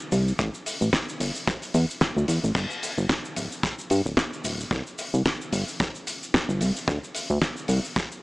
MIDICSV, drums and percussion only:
0, 0, Header, 1, 2, 480
1, 0, Start_track
1, 0, Tempo, 540541
1, 348, Time_signature, 4, 2, 24, 8
1, 7306, End_track
2, 0, Start_track
2, 0, Title_t, "Drums"
2, 107, Note_on_c, 9, 46, 100
2, 107, Note_on_c, 9, 82, 82
2, 196, Note_off_c, 9, 46, 0
2, 196, Note_off_c, 9, 82, 0
2, 247, Note_on_c, 9, 82, 46
2, 335, Note_off_c, 9, 82, 0
2, 346, Note_on_c, 9, 36, 114
2, 346, Note_on_c, 9, 82, 54
2, 435, Note_off_c, 9, 36, 0
2, 435, Note_off_c, 9, 82, 0
2, 482, Note_on_c, 9, 82, 40
2, 571, Note_off_c, 9, 82, 0
2, 589, Note_on_c, 9, 46, 105
2, 593, Note_on_c, 9, 82, 91
2, 677, Note_off_c, 9, 46, 0
2, 681, Note_off_c, 9, 82, 0
2, 723, Note_on_c, 9, 82, 55
2, 812, Note_off_c, 9, 82, 0
2, 825, Note_on_c, 9, 38, 115
2, 827, Note_on_c, 9, 36, 103
2, 834, Note_on_c, 9, 82, 59
2, 913, Note_off_c, 9, 38, 0
2, 916, Note_off_c, 9, 36, 0
2, 923, Note_off_c, 9, 82, 0
2, 967, Note_on_c, 9, 82, 47
2, 1056, Note_off_c, 9, 82, 0
2, 1070, Note_on_c, 9, 46, 107
2, 1075, Note_on_c, 9, 82, 84
2, 1159, Note_off_c, 9, 46, 0
2, 1163, Note_off_c, 9, 82, 0
2, 1199, Note_on_c, 9, 82, 50
2, 1288, Note_off_c, 9, 82, 0
2, 1310, Note_on_c, 9, 36, 121
2, 1314, Note_on_c, 9, 82, 58
2, 1398, Note_off_c, 9, 36, 0
2, 1403, Note_off_c, 9, 82, 0
2, 1439, Note_on_c, 9, 46, 65
2, 1446, Note_on_c, 9, 82, 46
2, 1528, Note_off_c, 9, 46, 0
2, 1535, Note_off_c, 9, 82, 0
2, 1547, Note_on_c, 9, 46, 104
2, 1551, Note_on_c, 9, 82, 92
2, 1636, Note_off_c, 9, 46, 0
2, 1640, Note_off_c, 9, 82, 0
2, 1689, Note_on_c, 9, 82, 49
2, 1778, Note_off_c, 9, 82, 0
2, 1786, Note_on_c, 9, 38, 127
2, 1787, Note_on_c, 9, 82, 61
2, 1791, Note_on_c, 9, 36, 99
2, 1875, Note_off_c, 9, 38, 0
2, 1876, Note_off_c, 9, 82, 0
2, 1880, Note_off_c, 9, 36, 0
2, 1934, Note_on_c, 9, 82, 40
2, 2023, Note_off_c, 9, 82, 0
2, 2025, Note_on_c, 9, 46, 102
2, 2035, Note_on_c, 9, 82, 93
2, 2114, Note_off_c, 9, 46, 0
2, 2124, Note_off_c, 9, 82, 0
2, 2168, Note_on_c, 9, 82, 54
2, 2257, Note_off_c, 9, 82, 0
2, 2264, Note_on_c, 9, 36, 117
2, 2271, Note_on_c, 9, 82, 64
2, 2272, Note_on_c, 9, 49, 99
2, 2353, Note_off_c, 9, 36, 0
2, 2359, Note_off_c, 9, 82, 0
2, 2361, Note_off_c, 9, 49, 0
2, 2402, Note_on_c, 9, 82, 43
2, 2491, Note_off_c, 9, 82, 0
2, 2512, Note_on_c, 9, 46, 106
2, 2515, Note_on_c, 9, 82, 96
2, 2601, Note_off_c, 9, 46, 0
2, 2604, Note_off_c, 9, 82, 0
2, 2644, Note_on_c, 9, 82, 49
2, 2733, Note_off_c, 9, 82, 0
2, 2747, Note_on_c, 9, 36, 113
2, 2749, Note_on_c, 9, 38, 121
2, 2749, Note_on_c, 9, 82, 57
2, 2836, Note_off_c, 9, 36, 0
2, 2838, Note_off_c, 9, 38, 0
2, 2838, Note_off_c, 9, 82, 0
2, 2885, Note_on_c, 9, 82, 45
2, 2974, Note_off_c, 9, 82, 0
2, 2987, Note_on_c, 9, 46, 112
2, 2993, Note_on_c, 9, 82, 87
2, 3076, Note_off_c, 9, 46, 0
2, 3082, Note_off_c, 9, 82, 0
2, 3124, Note_on_c, 9, 82, 49
2, 3213, Note_off_c, 9, 82, 0
2, 3226, Note_on_c, 9, 36, 111
2, 3232, Note_on_c, 9, 82, 66
2, 3315, Note_off_c, 9, 36, 0
2, 3321, Note_off_c, 9, 82, 0
2, 3362, Note_on_c, 9, 82, 44
2, 3451, Note_off_c, 9, 82, 0
2, 3464, Note_on_c, 9, 46, 102
2, 3474, Note_on_c, 9, 82, 92
2, 3553, Note_off_c, 9, 46, 0
2, 3563, Note_off_c, 9, 82, 0
2, 3605, Note_on_c, 9, 82, 48
2, 3694, Note_off_c, 9, 82, 0
2, 3703, Note_on_c, 9, 38, 117
2, 3706, Note_on_c, 9, 36, 100
2, 3713, Note_on_c, 9, 82, 62
2, 3792, Note_off_c, 9, 38, 0
2, 3795, Note_off_c, 9, 36, 0
2, 3802, Note_off_c, 9, 82, 0
2, 3846, Note_on_c, 9, 82, 41
2, 3935, Note_off_c, 9, 82, 0
2, 3947, Note_on_c, 9, 82, 87
2, 3949, Note_on_c, 9, 46, 110
2, 4035, Note_off_c, 9, 82, 0
2, 4038, Note_off_c, 9, 46, 0
2, 4086, Note_on_c, 9, 82, 50
2, 4175, Note_off_c, 9, 82, 0
2, 4182, Note_on_c, 9, 36, 122
2, 4188, Note_on_c, 9, 82, 54
2, 4271, Note_off_c, 9, 36, 0
2, 4277, Note_off_c, 9, 82, 0
2, 4323, Note_on_c, 9, 82, 43
2, 4412, Note_off_c, 9, 82, 0
2, 4426, Note_on_c, 9, 82, 81
2, 4429, Note_on_c, 9, 46, 110
2, 4515, Note_off_c, 9, 82, 0
2, 4518, Note_off_c, 9, 46, 0
2, 4564, Note_on_c, 9, 82, 50
2, 4653, Note_off_c, 9, 82, 0
2, 4668, Note_on_c, 9, 36, 103
2, 4668, Note_on_c, 9, 82, 57
2, 4670, Note_on_c, 9, 38, 127
2, 4757, Note_off_c, 9, 36, 0
2, 4757, Note_off_c, 9, 82, 0
2, 4758, Note_off_c, 9, 38, 0
2, 4805, Note_on_c, 9, 82, 44
2, 4894, Note_off_c, 9, 82, 0
2, 4907, Note_on_c, 9, 46, 118
2, 4912, Note_on_c, 9, 82, 82
2, 4996, Note_off_c, 9, 46, 0
2, 5001, Note_off_c, 9, 82, 0
2, 5045, Note_on_c, 9, 82, 57
2, 5134, Note_off_c, 9, 82, 0
2, 5150, Note_on_c, 9, 82, 57
2, 5151, Note_on_c, 9, 36, 127
2, 5239, Note_off_c, 9, 82, 0
2, 5240, Note_off_c, 9, 36, 0
2, 5284, Note_on_c, 9, 82, 42
2, 5373, Note_off_c, 9, 82, 0
2, 5391, Note_on_c, 9, 46, 101
2, 5394, Note_on_c, 9, 82, 91
2, 5480, Note_off_c, 9, 46, 0
2, 5483, Note_off_c, 9, 82, 0
2, 5531, Note_on_c, 9, 82, 57
2, 5620, Note_off_c, 9, 82, 0
2, 5631, Note_on_c, 9, 38, 127
2, 5635, Note_on_c, 9, 36, 121
2, 5636, Note_on_c, 9, 82, 65
2, 5720, Note_off_c, 9, 38, 0
2, 5724, Note_off_c, 9, 36, 0
2, 5725, Note_off_c, 9, 82, 0
2, 5767, Note_on_c, 9, 82, 43
2, 5856, Note_off_c, 9, 82, 0
2, 5868, Note_on_c, 9, 46, 107
2, 5875, Note_on_c, 9, 82, 90
2, 5957, Note_off_c, 9, 46, 0
2, 5964, Note_off_c, 9, 82, 0
2, 6006, Note_on_c, 9, 82, 49
2, 6095, Note_off_c, 9, 82, 0
2, 6107, Note_on_c, 9, 36, 123
2, 6114, Note_on_c, 9, 82, 63
2, 6196, Note_off_c, 9, 36, 0
2, 6203, Note_off_c, 9, 82, 0
2, 6250, Note_on_c, 9, 82, 44
2, 6339, Note_off_c, 9, 82, 0
2, 6346, Note_on_c, 9, 46, 115
2, 6355, Note_on_c, 9, 82, 91
2, 6435, Note_off_c, 9, 46, 0
2, 6444, Note_off_c, 9, 82, 0
2, 6484, Note_on_c, 9, 82, 48
2, 6572, Note_off_c, 9, 82, 0
2, 6585, Note_on_c, 9, 38, 127
2, 6586, Note_on_c, 9, 36, 107
2, 6595, Note_on_c, 9, 82, 56
2, 6674, Note_off_c, 9, 38, 0
2, 6675, Note_off_c, 9, 36, 0
2, 6683, Note_off_c, 9, 82, 0
2, 6720, Note_on_c, 9, 82, 45
2, 6809, Note_off_c, 9, 82, 0
2, 6821, Note_on_c, 9, 46, 121
2, 6829, Note_on_c, 9, 82, 84
2, 6909, Note_off_c, 9, 46, 0
2, 6918, Note_off_c, 9, 82, 0
2, 6967, Note_on_c, 9, 82, 52
2, 7055, Note_off_c, 9, 82, 0
2, 7070, Note_on_c, 9, 36, 126
2, 7072, Note_on_c, 9, 82, 57
2, 7159, Note_off_c, 9, 36, 0
2, 7161, Note_off_c, 9, 82, 0
2, 7207, Note_on_c, 9, 82, 39
2, 7296, Note_off_c, 9, 82, 0
2, 7306, End_track
0, 0, End_of_file